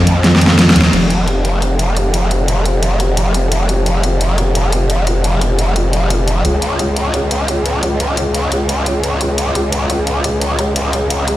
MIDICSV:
0, 0, Header, 1, 3, 480
1, 0, Start_track
1, 0, Tempo, 344828
1, 1296, Time_signature, 4, 2, 24, 8
1, 15824, End_track
2, 0, Start_track
2, 0, Title_t, "Wobble bass"
2, 0, Program_c, 0, 39
2, 0, Note_on_c, 0, 41, 104
2, 1037, Note_off_c, 0, 41, 0
2, 1056, Note_on_c, 0, 39, 99
2, 1277, Note_off_c, 0, 39, 0
2, 1296, Note_on_c, 0, 29, 80
2, 8952, Note_off_c, 0, 29, 0
2, 8976, Note_on_c, 0, 37, 85
2, 15824, Note_off_c, 0, 37, 0
2, 15824, End_track
3, 0, Start_track
3, 0, Title_t, "Drums"
3, 97, Note_on_c, 9, 42, 100
3, 236, Note_off_c, 9, 42, 0
3, 336, Note_on_c, 9, 38, 68
3, 336, Note_on_c, 9, 42, 86
3, 476, Note_off_c, 9, 38, 0
3, 476, Note_off_c, 9, 42, 0
3, 497, Note_on_c, 9, 38, 74
3, 576, Note_on_c, 9, 42, 99
3, 636, Note_off_c, 9, 38, 0
3, 657, Note_on_c, 9, 38, 78
3, 716, Note_off_c, 9, 42, 0
3, 796, Note_off_c, 9, 38, 0
3, 816, Note_on_c, 9, 38, 89
3, 816, Note_on_c, 9, 42, 84
3, 956, Note_off_c, 9, 38, 0
3, 956, Note_off_c, 9, 42, 0
3, 976, Note_on_c, 9, 38, 95
3, 1056, Note_on_c, 9, 42, 99
3, 1115, Note_off_c, 9, 38, 0
3, 1135, Note_on_c, 9, 38, 103
3, 1195, Note_off_c, 9, 42, 0
3, 1275, Note_off_c, 9, 38, 0
3, 1297, Note_on_c, 9, 42, 78
3, 1297, Note_on_c, 9, 49, 80
3, 1436, Note_off_c, 9, 42, 0
3, 1436, Note_off_c, 9, 49, 0
3, 1537, Note_on_c, 9, 42, 91
3, 1676, Note_off_c, 9, 42, 0
3, 1776, Note_on_c, 9, 42, 75
3, 1915, Note_off_c, 9, 42, 0
3, 2016, Note_on_c, 9, 42, 90
3, 2155, Note_off_c, 9, 42, 0
3, 2256, Note_on_c, 9, 42, 79
3, 2396, Note_off_c, 9, 42, 0
3, 2496, Note_on_c, 9, 42, 88
3, 2635, Note_off_c, 9, 42, 0
3, 2736, Note_on_c, 9, 42, 85
3, 2875, Note_off_c, 9, 42, 0
3, 2976, Note_on_c, 9, 42, 96
3, 3115, Note_off_c, 9, 42, 0
3, 3215, Note_on_c, 9, 42, 78
3, 3354, Note_off_c, 9, 42, 0
3, 3455, Note_on_c, 9, 42, 89
3, 3594, Note_off_c, 9, 42, 0
3, 3695, Note_on_c, 9, 42, 72
3, 3835, Note_off_c, 9, 42, 0
3, 3934, Note_on_c, 9, 42, 85
3, 4073, Note_off_c, 9, 42, 0
3, 4174, Note_on_c, 9, 42, 78
3, 4314, Note_off_c, 9, 42, 0
3, 4415, Note_on_c, 9, 42, 88
3, 4554, Note_off_c, 9, 42, 0
3, 4655, Note_on_c, 9, 42, 76
3, 4794, Note_off_c, 9, 42, 0
3, 4896, Note_on_c, 9, 42, 92
3, 5035, Note_off_c, 9, 42, 0
3, 5136, Note_on_c, 9, 42, 75
3, 5275, Note_off_c, 9, 42, 0
3, 5377, Note_on_c, 9, 42, 85
3, 5516, Note_off_c, 9, 42, 0
3, 5617, Note_on_c, 9, 42, 70
3, 5756, Note_off_c, 9, 42, 0
3, 5857, Note_on_c, 9, 42, 84
3, 5996, Note_off_c, 9, 42, 0
3, 6097, Note_on_c, 9, 42, 73
3, 6236, Note_off_c, 9, 42, 0
3, 6337, Note_on_c, 9, 42, 86
3, 6476, Note_off_c, 9, 42, 0
3, 6577, Note_on_c, 9, 42, 78
3, 6716, Note_off_c, 9, 42, 0
3, 6817, Note_on_c, 9, 42, 85
3, 6956, Note_off_c, 9, 42, 0
3, 7057, Note_on_c, 9, 42, 69
3, 7196, Note_off_c, 9, 42, 0
3, 7297, Note_on_c, 9, 42, 81
3, 7436, Note_off_c, 9, 42, 0
3, 7537, Note_on_c, 9, 42, 70
3, 7676, Note_off_c, 9, 42, 0
3, 7776, Note_on_c, 9, 42, 80
3, 7915, Note_off_c, 9, 42, 0
3, 8017, Note_on_c, 9, 42, 71
3, 8156, Note_off_c, 9, 42, 0
3, 8256, Note_on_c, 9, 42, 85
3, 8396, Note_off_c, 9, 42, 0
3, 8497, Note_on_c, 9, 42, 75
3, 8636, Note_off_c, 9, 42, 0
3, 8736, Note_on_c, 9, 42, 86
3, 8875, Note_off_c, 9, 42, 0
3, 8976, Note_on_c, 9, 42, 71
3, 9115, Note_off_c, 9, 42, 0
3, 9216, Note_on_c, 9, 42, 84
3, 9355, Note_off_c, 9, 42, 0
3, 9456, Note_on_c, 9, 42, 71
3, 9596, Note_off_c, 9, 42, 0
3, 9695, Note_on_c, 9, 42, 86
3, 9834, Note_off_c, 9, 42, 0
3, 9936, Note_on_c, 9, 42, 71
3, 10075, Note_off_c, 9, 42, 0
3, 10176, Note_on_c, 9, 42, 81
3, 10315, Note_off_c, 9, 42, 0
3, 10416, Note_on_c, 9, 42, 75
3, 10555, Note_off_c, 9, 42, 0
3, 10657, Note_on_c, 9, 42, 86
3, 10796, Note_off_c, 9, 42, 0
3, 10897, Note_on_c, 9, 42, 73
3, 11036, Note_off_c, 9, 42, 0
3, 11137, Note_on_c, 9, 42, 87
3, 11276, Note_off_c, 9, 42, 0
3, 11376, Note_on_c, 9, 42, 73
3, 11515, Note_off_c, 9, 42, 0
3, 11616, Note_on_c, 9, 42, 87
3, 11755, Note_off_c, 9, 42, 0
3, 11856, Note_on_c, 9, 42, 77
3, 11996, Note_off_c, 9, 42, 0
3, 12097, Note_on_c, 9, 42, 85
3, 12236, Note_off_c, 9, 42, 0
3, 12337, Note_on_c, 9, 42, 77
3, 12476, Note_off_c, 9, 42, 0
3, 12577, Note_on_c, 9, 42, 90
3, 12716, Note_off_c, 9, 42, 0
3, 12816, Note_on_c, 9, 42, 79
3, 12956, Note_off_c, 9, 42, 0
3, 13057, Note_on_c, 9, 42, 91
3, 13197, Note_off_c, 9, 42, 0
3, 13297, Note_on_c, 9, 42, 76
3, 13437, Note_off_c, 9, 42, 0
3, 13537, Note_on_c, 9, 42, 91
3, 13676, Note_off_c, 9, 42, 0
3, 13776, Note_on_c, 9, 42, 78
3, 13916, Note_off_c, 9, 42, 0
3, 14017, Note_on_c, 9, 42, 89
3, 14156, Note_off_c, 9, 42, 0
3, 14257, Note_on_c, 9, 42, 82
3, 14396, Note_off_c, 9, 42, 0
3, 14497, Note_on_c, 9, 42, 90
3, 14636, Note_off_c, 9, 42, 0
3, 14736, Note_on_c, 9, 42, 81
3, 14875, Note_off_c, 9, 42, 0
3, 14976, Note_on_c, 9, 42, 94
3, 15116, Note_off_c, 9, 42, 0
3, 15217, Note_on_c, 9, 42, 78
3, 15356, Note_off_c, 9, 42, 0
3, 15457, Note_on_c, 9, 42, 96
3, 15596, Note_off_c, 9, 42, 0
3, 15696, Note_on_c, 9, 42, 83
3, 15824, Note_off_c, 9, 42, 0
3, 15824, End_track
0, 0, End_of_file